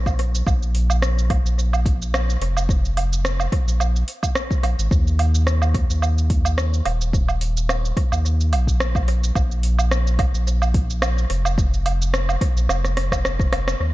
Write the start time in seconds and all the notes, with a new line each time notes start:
Already playing: A#1
0.06 kick, low woodblock, shaker
0.19 open hi-hat
0.35 shaker
0.47 A#1, kick, low woodblock, shaker
0.63 shaker
0.75 open hi-hat
0.90 low woodblock, shaker
1.02 cross-stick, shaker
1.18 shaker
1.30 kick, open hi-hat, low woodblock
1.45 A#1, shaker
1.59 shaker
1.73 low woodblock, shaker
1.86 kick, open hi-hat
2.02 shaker
2.14 cross-stick, low woodblock, shaker
2.30 shaker
2.41 F1, open hi-hat
2.57 low woodblock, shaker
2.69 kick, shaker
2.85 shaker
2.97 open hi-hat, low woodblock
3.13 shaker
3.25 cross-stick, shaker
3.40 low woodblock, shaker
3.52 kick, open hi-hat
3.67 A#1, shaker
3.80 low woodblock, shaker
3.96 shaker
4.08 open hi-hat
4.23 kick, low woodblock, shaker
4.35 cross-stick, shaker
4.51 kick, shaker
4.63 A#1, open hi-hat, low woodblock
4.78 G#1, shaker
4.91 D#2, kick, shaker
5.07 shaker
5.19 open hi-hat, low woodblock
5.35 shaker
5.47 cross-stick, shaker
5.62 low woodblock, shaker
5.74 kick, open hi-hat
5.90 D#2, shaker
6.02 low woodblock, shaker
6.18 shaker
6.30 kick, open hi-hat
6.45 low woodblock, shaker
6.58 cross-stick, shaker
6.74 shaker
6.86 D#1, open hi-hat, low woodblock
7.01 shaker
7.13 kick, shaker
7.29 low woodblock, shaker
7.41 open hi-hat
7.57 shaker
7.69 cross-stick, low woodblock, shaker
7.85 shaker
7.97 kick, open hi-hat
8.12 D#2, low woodblock, shaker
8.26 shaker
8.41 shaker
8.53 A#1, open hi-hat, low woodblock
8.67 kick, shaker
8.80 cross-stick, shaker
8.95 kick, low woodblock, shaker
9.08 open hi-hat
9.24 shaker
9.35 A#1, kick, low woodblock, shaker
9.52 shaker
9.63 open hi-hat
9.79 low woodblock, shaker
9.91 cross-stick, shaker
10.07 shaker
10.19 kick, open hi-hat, low woodblock
10.34 A#1, shaker
10.47 shaker
10.62 low woodblock, shaker
10.74 kick, open hi-hat
10.90 shaker
11.02 cross-stick, low woodblock, shaker
11.18 shaker
11.30 F1, open hi-hat
11.45 low woodblock, shaker
11.58 kick, shaker
11.74 shaker
11.86 open hi-hat, low woodblock
12.02 shaker
12.14 cross-stick, shaker
12.29 low woodblock, shaker
12.41 kick, open hi-hat
12.56 A#1, shaker
12.69 F1, cross-stick, low woodblock, shaker
12.85 cross-stick, shaker
12.97 cross-stick, open hi-hat
13.12 kick, cross-stick, low woodblock, shaker
13.25 cross-stick, shaker
13.40 kick, shaker
13.52 F1, cross-stick, open hi-hat, low woodblock
13.68 cross-stick, shaker
13.80 D#2